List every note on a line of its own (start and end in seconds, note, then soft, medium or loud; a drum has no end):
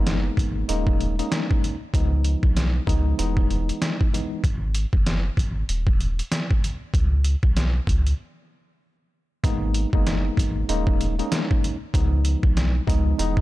0.00 0.30 F#1 medium
0.00 0.68 G#3 loud
0.00 0.68 A#3 medium
0.00 0.69 B3 medium
0.00 0.68 D#4 loud
0.07 snare loud
0.07 closed hi-hat medium
0.37 0.64 G#1 medium
0.37 kick medium
0.37 closed hi-hat medium
0.69 1.22 D#1 loud
0.69 1.14 G#3 medium
0.69 1.14 A#3 medium
0.69 1.14 C#4 medium
0.69 1.14 D#4 loud
0.69 closed hi-hat loud
0.87 kick loud
1.01 closed hi-hat medium
1.19 1.75 G#3 medium
1.19 1.75 A#3 medium
1.19 1.75 C#4 medium
1.19 1.76 D#4 loud
1.19 closed hi-hat soft
1.32 snare loud
1.32 closed hi-hat medium
1.51 kick medium
1.64 closed hi-hat medium
1.94 2.36 C#2 loud
1.94 2.82 C#2 loud
1.94 2.82 F3 medium
1.94 2.82 G#3 medium
1.94 2.82 B3 medium
1.94 2.82 D#4 loud
1.94 kick loud
1.94 closed hi-hat medium
2.25 closed hi-hat medium
2.43 2.80 B1 medium
2.43 kick loud
2.57 snare loud
2.57 closed hi-hat medium
2.87 3.18 C#2 medium
2.87 3.14 C#2 medium
2.87 3.18 F3 medium
2.87 3.17 G#3 medium
2.87 3.17 B3 medium
2.87 3.18 D#4 loud
2.87 kick medium
2.87 closed hi-hat medium
3.18 3.71 E1 loud
3.18 4.06 E3 medium
3.18 4.06 G#3 medium
3.18 4.06 B3 medium
3.18 4.07 D#4 loud
3.18 closed hi-hat loud
3.37 kick loud
3.51 closed hi-hat medium
3.69 closed hi-hat medium
3.82 snare loud
3.82 closed hi-hat medium
4.01 kick medium
4.13 4.42 E3 medium
4.13 4.42 G#3 medium
4.13 4.42 B3 medium
4.13 4.42 D#4 medium
4.13 closed hi-hat medium
4.44 4.86 G#1 loud
4.44 kick loud
4.44 closed hi-hat medium
4.75 closed hi-hat medium
4.93 5.30 F#1 medium
4.93 kick medium
5.06 snare loud
5.06 closed hi-hat medium
5.37 5.64 G#1 medium
5.37 kick medium
5.37 closed hi-hat medium
5.69 6.21 D#1 loud
5.69 closed hi-hat medium
5.87 kick loud
6.01 closed hi-hat medium
6.19 closed hi-hat medium
6.32 snare loud
6.32 closed hi-hat medium
6.51 kick medium
6.64 closed hi-hat medium
6.94 7.36 C#2 loud
6.94 kick loud
6.94 closed hi-hat medium
7.24 closed hi-hat medium
7.43 7.80 B1 medium
7.43 kick loud
7.57 snare loud
7.57 closed hi-hat medium
7.87 8.14 C#2 medium
7.87 kick medium
7.87 closed hi-hat medium
8.07 closed hi-hat medium
9.44 9.86 G#1 loud
9.44 9.89 G#3 loud
9.44 9.89 A#3 medium
9.44 9.89 B3 medium
9.44 9.89 D#4 loud
9.44 kick loud
9.44 closed hi-hat medium
9.74 closed hi-hat medium
9.93 10.30 F#1 medium
9.93 10.67 G#3 loud
9.93 10.68 A#3 medium
9.93 10.69 B3 medium
9.93 10.68 D#4 loud
9.93 kick loud
10.07 snare loud
10.07 closed hi-hat medium
10.37 10.64 G#1 medium
10.37 kick medium
10.37 closed hi-hat medium
10.69 11.21 D#1 loud
10.69 11.14 G#3 loud
10.69 11.14 A#3 medium
10.69 11.14 C#4 medium
10.69 11.14 D#4 loud
10.69 closed hi-hat loud
10.87 kick loud
11.01 closed hi-hat medium
11.19 11.75 G#3 medium
11.19 11.75 A#3 medium
11.19 11.75 C#4 medium
11.19 11.76 D#4 loud
11.19 closed hi-hat medium
11.32 snare loud
11.32 closed hi-hat loud
11.51 kick medium
11.64 closed hi-hat medium
11.94 12.36 C#2 loud
11.94 12.82 C#2 loud
11.94 12.82 F3 medium
11.94 12.82 G#3 medium
11.94 12.82 B3 medium
11.94 12.82 D#4 loud
11.94 kick loud
11.94 closed hi-hat medium
12.25 closed hi-hat medium
12.43 12.80 B1 medium
12.43 kick loud
12.57 snare loud
12.57 closed hi-hat medium
12.87 13.18 C#2 medium
12.87 13.14 C#2 medium
12.87 13.19 F3 medium
12.87 13.18 G#3 medium
12.87 13.18 B3 medium
12.87 13.18 D#4 loud
12.87 kick medium
12.87 closed hi-hat medium
13.19 13.41 E1 loud
13.19 13.41 E3 medium
13.19 13.41 G#3 medium
13.19 13.41 B3 medium
13.19 13.41 D#4 loud
13.19 closed hi-hat loud
13.37 kick loud